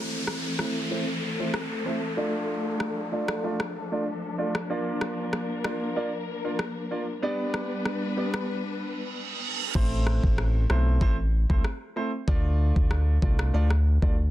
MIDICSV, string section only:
0, 0, Header, 1, 2, 480
1, 0, Start_track
1, 0, Key_signature, 0, "minor"
1, 0, Tempo, 631579
1, 1651, Time_signature, 4, 2, 24, 8
1, 10873, End_track
2, 0, Start_track
2, 0, Title_t, "String section"
2, 0, Program_c, 0, 48
2, 0, Note_on_c, 0, 52, 75
2, 0, Note_on_c, 0, 57, 69
2, 0, Note_on_c, 0, 60, 71
2, 0, Note_on_c, 0, 69, 87
2, 1631, Note_off_c, 0, 52, 0
2, 1631, Note_off_c, 0, 60, 0
2, 1649, Note_on_c, 0, 53, 76
2, 1650, Note_on_c, 0, 62, 72
2, 3539, Note_off_c, 0, 57, 0
2, 3539, Note_off_c, 0, 69, 0
2, 3570, Note_on_c, 0, 70, 86
2, 3571, Note_on_c, 0, 58, 73
2, 5459, Note_off_c, 0, 53, 0
2, 5460, Note_off_c, 0, 62, 0
2, 5471, Note_off_c, 0, 70, 0
2, 5472, Note_off_c, 0, 58, 0
2, 5487, Note_on_c, 0, 55, 80
2, 5487, Note_on_c, 0, 59, 71
2, 5487, Note_on_c, 0, 62, 76
2, 5488, Note_on_c, 0, 71, 85
2, 7389, Note_off_c, 0, 59, 0
2, 7390, Note_off_c, 0, 55, 0
2, 7390, Note_off_c, 0, 62, 0
2, 7390, Note_off_c, 0, 71, 0
2, 10873, End_track
0, 0, End_of_file